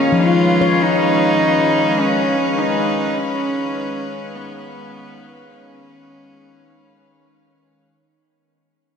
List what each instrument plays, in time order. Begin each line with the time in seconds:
Already playing: synth drone D#3, string section G#3 C#4 C#5 F5, handpan A#3 C#4, cello C#4
0.10 handpan F3, string section B4
0.22 cello F4
0.61 handpan C#5
0.82 cello D#4
1.99 cello C#4
2.58 cello D#4
3.17 cello C#4
4.34 cello B3
5.50 cello C#4